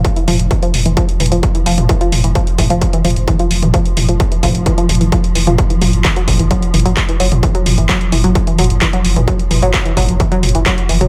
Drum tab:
HH |x-x-o-x-x-x-o-x-x-x-oxx-x-x-o-x-|x-x-o-x-x-x-o-x-x-x-oxx-x-x-o-x-|x-x-o-x-x-x-o-x-x-x-oxx-x-x-o-x-|x-x-o-x-x-x-o-x-x-x-oxx-x-x-o-x-|
CP |--------------------------------|--------------------------------|--------------------------------|--------x---------------x-------|
T2 |----o-------o-------o---------o-|----o-------o-------o---------o-|----o-------o-------o---------o-|----o-------o-------o---------o-|
BD |o-------o-------o-------o-------|o-------o---o---o-------o-------|o-------o---o---o-------o-------|o-------o---o---o-------o-------|

HH |x-x-o-x-x-x-o-x-x-x-oxx-x-x-o-x-|x-x-o-x-x-x-o-x-x-x-oxx-x-x-o-x-|
CP |--------x---------------x-------|--------x---------------x-------|
T2 |----o-------o-------o---------o-|----o-------o-------o---------o-|
BD |o-------o-------o-------o-------|o-------o---o---o-------o-------|